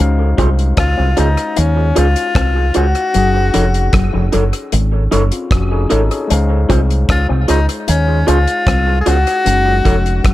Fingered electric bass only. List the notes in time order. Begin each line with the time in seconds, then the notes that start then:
0.00 C#2
0.39 C2
0.78 C#2
0.99 C2
1.19 C#2
1.58 D#2
1.98 C#2
2.36 C2
2.77 C#2
3.16 F#1
3.56 F1
3.94 F#1
4.15 F1
4.34 F#1
4.73 G#1
5.13 F#1
5.52 F1
5.92 G#1
6.31 C#2
6.70 C2
7.10 C#2
7.30 C2
7.50 C#2
7.89 D#2
8.29 C#2
8.67 C2
9.07 C#2
9.47 F#1
9.86 F1
10.26 F#1